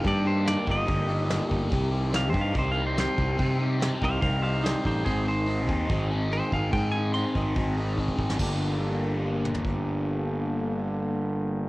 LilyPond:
<<
  \new Staff \with { instrumentName = "Clean electric guitar" } { \time 4/4 \key g \phrygian \tempo 4 = 144 d''8 c''8 d''8 ees''2~ ees''8~ | ees''8 r8 \tuplet 3/2 { f''8 c''8 f''8 c''8 f''8 c''8 } c''4~ | c''4 r8 <c'' f''>8 <c'' f''>8 <c'' f''>8 <ees' c''>8 <ees' c''>8 | <aes' c''>8 c''2 r8 c''8 f''8 |
g''8 aes''8 c'''2 r4 | r1 | r1 | }
  \new Staff \with { instrumentName = "Overdriven electric guitar" } { \time 4/4 \key g \phrygian <bes ees' g'>8 <ees' g'>8 <bes ees' g'>8 <ees' g'>8 <bes ees' g'>8 <bes ees' g'>8 <bes ees' g'>8 <ees' g'>8 | <g c' ees' g'>8 <c' ees' g'>8 <g c' ees' g'>8 <c' ees' g'>8 <g c' ees' g'>8 <g c' ees' g'>8 <g c' ees' g'>8 <c' ees' g'>8 | <g c' ees' g'>8 <c' ees' g'>8 <g c' ees' g'>8 <c' ees' g'>8 <g c' ees' g'>8 <g c' ees' g'>8 <g c' ees' g'>8 <c' ees' g'>8 | <c' ees' aes'>8 <ees' aes'>8 <c' ees' aes'>8 <ees' aes'>8 <c' ees' aes'>8 <c' ees' aes'>8 <c' ees' aes'>8 <ees' aes'>8 |
<c' ees' aes'>8 <ees' aes'>8 <c' ees' aes'>8 <ees' aes'>8 <c' ees' aes'>8 <c' ees' aes'>8 <c' ees' aes'>8 <ees' aes'>8 | <bes d' g'>1~ | <bes d' g'>1 | }
  \new Staff \with { instrumentName = "Overdriven electric guitar" } { \clef bass \time 4/4 \key g \phrygian <g, ees g>8 ees8 bes8 ees'8 g8 ees8 g8 ees8 | c8 c8 c'8 ees'8 g8 c8 g8 c8 | c8 c8 c'8 ees'8 g8 c8 g8 c8 | aes,8 ees8 c'8 ees'8 aes8 ees8 aes8 ees8 |
aes,8 ees8 c'8 ees'8 aes8 ees8 aes8 ees8 | <g, d g bes d'>1~ | <g, d g bes d'>1 | }
  \new Staff \with { instrumentName = "Picked electric bass" } { \clef bass \time 4/4 \key g \phrygian g,4. g,,8 g,,4. g,,8 | c,4. g,8 c,4. c,8 | c4. c,8 c,4. a,,8 | aes,,4. ees,8 aes,,4. aes,,8 |
aes,4. aes,,8 aes,,4. aes,,8 | g,,1~ | g,,1 | }
  \new DrumStaff \with { instrumentName = "Drums" } \drummode { \time 4/4 <hho bd>4 <hho sn>8 bd8 <hho bd>4 <hho sn>8 bd8 | <hho bd>4 <hho sn>8 bd8 <hho bd>4 <hho sn>8 bd8 | <hho bd>4 <hho sn>8 bd8 <hho bd>4 sn8 bd8 | <hho bd>4 hho8 bd8 <hho bd>4 hho8 bd8 |
<hho bd>4 hho8 bd8 <hho bd>4 bd16 bd16 bd16 sn16 | <cymc bd>4 r4 r8 toml16 tomfh16 bd4 | r4 r4 r4 r4 | }
>>